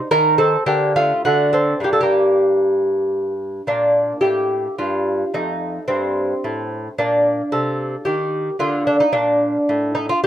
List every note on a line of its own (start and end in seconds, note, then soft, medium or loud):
0.11 0.55 D#3 medium
0.11 0.37 D#4 medium
0.11 0.37 A#4 loud
0.38 0.64 C4 medium
0.38 0.65 A4 medium
0.66 1.12 D3 medium
0.66 0.93 A#3 medium
0.66 0.93 G4 medium
0.96 1.22 A3 medium
0.96 1.23 F4 medium
1.25 1.73 D3 medium
1.25 1.52 A3 medium
1.25 1.52 F#4 medium
1.53 1.81 C4 medium
1.53 1.82 A4 medium
1.80 3.60 G2 medium
1.80 3.61 G3 soft
1.80 2.02 A#3 soft
1.80 1.91 G4 medium
1.93 1.99 A4 medium
2.01 3.34 A#3 medium
2.01 3.33 G4 medium
3.67 4.12 A#2 soft
3.67 5.30 A#3 soft
3.67 4.21 D4 medium
4.21 4.67 A2 soft
4.21 4.75 G4 medium
4.78 5.23 G2 soft
4.78 5.31 F4 medium
5.34 5.78 F2 soft
5.34 6.94 A3 soft
5.34 5.86 D#4 medium
5.88 6.32 G2 soft
5.88 6.94 C4 medium
6.44 6.87 A2 medium
6.98 7.41 A#2 soft
6.98 8.55 A#3 soft
6.98 7.49 D4 medium
7.52 7.95 C3 soft
7.52 8.03 A4 medium
8.05 8.49 D#3 medium
8.05 8.57 G4 medium
8.59 9.02 D3 medium
8.59 10.17 A#3 soft
8.59 8.85 F4 medium
8.87 9.00 D4 medium
9.00 9.13 D#4 medium
9.13 9.56 A#2 medium
9.13 9.90 D4 medium
9.69 10.12 A2 medium
9.95 10.08 D#4 medium
10.09 10.22 F4 medium
10.23 10.27 A#3 soft
10.23 10.27 G4 medium